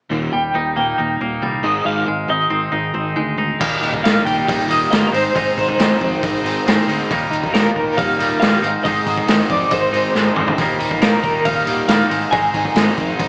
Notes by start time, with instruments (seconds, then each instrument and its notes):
0.10 fingered electric bass D#1, overdriven electric guitar D#2 A#2 D#3, clean electric guitar D#2
0.33 fingered electric bass D#1, overdriven electric guitar D#2 A#2, clean electric guitar G3 G5
0.54 fingered electric bass D#1, overdriven electric guitar D#2 A#2, clean electric guitar D#4
0.76 overdriven electric guitar D#2 A#2, clean electric guitar A#3 G5
0.98 fingered electric bass D#1, overdriven electric guitar D#2 A#2, clean electric guitar D#4
1.20 fingered electric bass D#1, overdriven electric guitar D#2 A#2, clean electric guitar A#3
1.42 fingered electric bass C2, overdriven electric guitar D#2 A#2, clean electric guitar G3
1.63 fingered electric bass G#1, overdriven electric guitar G#2 D#3 G#3, clean electric guitar G#2 D#5
1.85 fingered electric bass G#1, overdriven electric guitar G#2 D#3 G#3, clean electric guitar G#2 F5
2.06 fingered electric bass G#1, overdriven electric guitar G#2 D#3, clean electric guitar G#3
2.28 fingered electric bass G#1, overdriven electric guitar G#2 D#3, clean electric guitar D#4 D#5
2.50 fingered electric bass G#1, overdriven electric guitar G#2 D#3, clean electric guitar C4
2.72 fingered electric bass G#1, overdriven electric guitar G#2 D#3, clean electric guitar D#4
2.94 fingered electric bass G#1, overdriven electric guitar G#2 D#3, clean electric guitar C4
3.16 fingered electric bass D2, overdriven electric guitar G#2 D#3, clean electric guitar G#3
3.38 overdriven electric guitar G#2 D#3, clean electric guitar D#4
3.60 fingered electric bass D#1, clean electric guitar D#2 A#2 D#3 G3 A#3 D#4, overdriven electric guitar D#2, kick, crash
3.81 fingered electric bass D#1, overdriven electric guitar D#4, open hi-hat
3.94 kick
4.03 fingered electric bass D#1, clean electric guitar D#2 A#2 D#3 G3 A#3 D#4 F5, overdriven electric guitar A#3, snare, open hi-hat
4.25 fingered electric bass D#1, overdriven electric guitar D#3, clean electric guitar G5, kick, open hi-hat
4.47 fingered electric bass D#1, overdriven electric guitar G3, kick, open hi-hat
4.69 fingered electric bass D#1, overdriven electric guitar D#3, clean electric guitar D#3 G3 A#3 D#4 D#5, open hi-hat
4.91 fingered electric bass G1, clean electric guitar D#3 G3 A#3 D#4 D#5, overdriven electric guitar A#3, snare, open hi-hat
5.07 clean electric guitar A#4
5.12 fingered electric bass G#1, overdriven electric guitar G#2, clean electric guitar G#2 D#3 G#3 C4 D#4 C5, open hi-hat
5.34 fingered electric bass G#1, clean electric guitar G#2 D#3 G#3 C4 D#4, overdriven electric guitar G#2, kick, open hi-hat
5.57 fingered electric bass G#1, overdriven electric guitar D#4, clean electric guitar C5, kick, open hi-hat
5.69 kick
5.78 fingered electric bass G#1, clean electric guitar G#2 D#3 G#3 C4 D#4, overdriven electric guitar C4, snare, open hi-hat
6.00 fingered electric bass F2, overdriven electric guitar D#3, kick, open hi-hat
6.22 fingered electric bass G#1, overdriven electric guitar G#3, kick, open hi-hat
6.44 fingered electric bass G#1, overdriven electric guitar D#3, clean electric guitar G#3 C4 D#4, open hi-hat
6.66 fingered electric bass G#1, clean electric guitar D#3 G#3 C4 D#4, overdriven electric guitar C4, snare, open hi-hat
6.88 fingered electric bass D2, overdriven electric guitar G#3, clean electric guitar G#3 C4 D#4, open hi-hat
7.10 fingered electric bass D#1, overdriven electric guitar D#2, clean electric guitar D#2 A#2 D#3 G3 A#3 D#4, kick, open hi-hat
7.31 fingered electric bass D#1, overdriven electric guitar D#4, open hi-hat
7.44 kick
7.53 fingered electric bass D#1, clean electric guitar D#2 A#2 D#3 G3 A#3 D#4 A#4, overdriven electric guitar A#3, snare, open hi-hat
7.75 fingered electric bass D#1, overdriven electric guitar D#3, clean electric guitar A#4, kick, open hi-hat
7.97 fingered electric bass D#1, overdriven electric guitar G3, clean electric guitar F5, kick, open hi-hat
8.19 fingered electric bass D#1, overdriven electric guitar D#3, clean electric guitar D#3 G3 A#3 D#4, open hi-hat
8.40 fingered electric bass D#1, clean electric guitar D#3 G3 A#3 D#4 F5, overdriven electric guitar A#3, snare, open hi-hat
8.62 fingered electric bass G#1, overdriven electric guitar G#2, clean electric guitar G#2 D#3 G#3 C4 D#4, open hi-hat
8.84 fingered electric bass G#1, overdriven electric guitar G#2, clean electric guitar G#2 D#3 G#3 C4 D#5, kick, open hi-hat
8.88 clean electric guitar D#4
9.06 fingered electric bass G#1, overdriven electric guitar D#4, kick, open hi-hat
9.17 kick
9.27 fingered electric bass G#1, clean electric guitar G#2 D#3 G#3 C4 D#4, overdriven electric guitar C4, snare, open hi-hat
9.49 fingered electric bass F2, overdriven electric guitar D#3, clean electric guitar D5, kick, open hi-hat
9.71 fingered electric bass G#1, overdriven electric guitar G#3, clean electric guitar C5, kick, open hi-hat
9.92 fingered electric bass G#1, overdriven electric guitar D#3, clean electric guitar C4 D#4, open hi-hat
9.96 clean electric guitar G#3
10.14 fingered electric bass G#1, clean electric guitar D#3 G#3 C4 D#4, overdriven electric guitar C4, snare
10.35 fingered electric bass G#1, overdriven electric guitar G#3, clean electric guitar D#4, mid tom
10.39 clean electric guitar G#3 C4
10.47 floor tom
10.58 fingered electric bass D#1, overdriven electric guitar D#2, clean electric guitar D#2 A#2 D#3 G3 A#3 D#4, kick, open hi-hat
10.79 fingered electric bass D#1, overdriven electric guitar D#4, open hi-hat
10.91 kick
11.01 fingered electric bass D#1, clean electric guitar D#2 A#2 D#3 G3 A#3 D#4 A#4, overdriven electric guitar A#3, snare, open hi-hat
11.23 fingered electric bass D#1, overdriven electric guitar D#3, clean electric guitar A#4, kick, open hi-hat
11.45 fingered electric bass D#1, overdriven electric guitar G3, clean electric guitar F5, kick, open hi-hat
11.66 fingered electric bass D#1, overdriven electric guitar D#3, clean electric guitar D#3 G3 A#3 D#4, open hi-hat
11.88 fingered electric bass D#1, clean electric guitar D#3 G3 A#3 D#4 F5, overdriven electric guitar A#3, snare, open hi-hat
12.09 fingered electric bass G#1, overdriven electric guitar G#2, clean electric guitar G#2 D#3 G#3 C4 D#4, open hi-hat
12.31 fingered electric bass G#1, clean electric guitar G#2 D#3 G#3 C4 D#4 G#5, overdriven electric guitar G#2, kick, open hi-hat
12.54 fingered electric bass G#1, overdriven electric guitar D#4, kick, open hi-hat
12.65 kick
12.75 fingered electric bass G#1, clean electric guitar G#2 D#3 G#3 C4, overdriven electric guitar C4, snare, open hi-hat
12.79 clean electric guitar D#4
12.97 fingered electric bass F2, overdriven electric guitar D#3, kick, open hi-hat
13.19 fingered electric bass G#1, overdriven electric guitar G#3, kick, open hi-hat